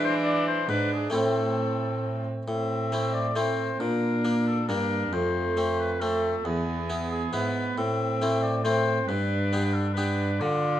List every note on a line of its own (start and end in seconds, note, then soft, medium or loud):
0.00 0.65 E3 medium
0.00 0.70 E3 medium
0.00 1.08 G#3 medium
0.00 0.65 D4 medium
0.00 1.08 D4 medium
0.00 1.09 E4 medium
0.05 0.14 C5 loud
0.24 0.46 D5 loud
0.47 0.69 C5 loud
0.69 1.09 G#2 medium
0.69 1.13 G#2 medium
0.69 1.13 D4 medium
0.69 0.91 B4 loud
0.93 1.14 G#4 medium
1.10 2.25 A2 medium
1.10 2.42 A3 soft
1.10 2.43 C4 soft
1.10 2.26 C4 medium
1.10 2.43 E4 soft
1.14 2.24 A2 medium
1.14 2.24 A4 medium
2.47 3.76 A2 soft
2.47 3.76 A2 medium
2.47 3.32 C4 medium
2.47 3.15 E5 medium
2.92 3.24 A3 soft
2.92 3.24 C4 soft
2.92 3.24 E4 soft
3.14 3.35 D5 medium
3.36 3.68 A3 soft
3.36 3.68 C4 soft
3.36 3.81 C4 medium
3.36 3.68 E4 soft
3.36 3.79 C5 medium
3.80 4.70 A#2 medium
3.80 4.65 A#2 soft
3.80 4.68 D4 medium
3.80 4.45 A#4 medium
4.25 4.56 A#3 soft
4.25 4.57 D4 soft
4.47 4.68 A4 medium
4.68 5.12 G2 soft
4.68 5.09 G2 soft
4.68 5.01 A#3 soft
4.68 5.14 D4 medium
4.68 5.01 D4 soft
4.68 5.15 A#4 medium
5.13 6.41 F2 soft
5.13 6.42 F2 medium
5.13 6.01 A3 medium
5.13 5.79 C5 medium
5.57 5.89 A3 soft
5.57 5.89 C4 soft
5.80 6.03 B4 medium
6.01 6.46 A3 medium
6.01 6.33 A3 soft
6.01 6.33 C4 soft
6.01 6.46 A4 medium
6.45 7.31 E2 medium
6.45 7.29 E2 soft
6.45 7.33 B3 medium
6.45 7.11 G#4 medium
6.90 7.21 B3 soft
6.90 7.21 E4 soft
7.11 7.32 G#4 medium
7.33 7.73 G#2 soft
7.33 7.76 G#2 medium
7.33 7.65 B3 soft
7.33 7.80 B3 medium
7.33 7.65 E4 soft
7.33 7.76 B4 medium
7.78 9.05 A2 soft
7.78 9.06 A2 medium
7.78 8.65 C4 medium
7.78 8.44 E5 medium
8.22 8.53 A3 soft
8.22 8.53 C4 soft
8.22 8.53 E4 soft
8.43 8.64 D5 medium
8.64 8.96 A3 soft
8.64 8.96 C4 soft
8.64 9.11 C4 medium
8.64 8.97 E4 soft
8.64 9.07 C5 medium
9.08 10.36 G2 medium
9.08 10.42 G2 medium
9.08 9.97 D4 medium
9.08 9.75 B4 medium
9.53 9.84 B3 soft
9.53 9.84 D4 soft
9.53 9.85 G4 soft
9.74 9.93 A4 medium
9.94 10.28 B3 soft
9.94 10.28 D4 soft
9.94 10.43 D4 medium
9.94 10.41 B4 medium
9.98 10.29 G4 soft
10.40 10.80 D3 medium
10.40 10.80 D3 soft
10.40 10.80 F4 medium
10.40 10.80 D5 medium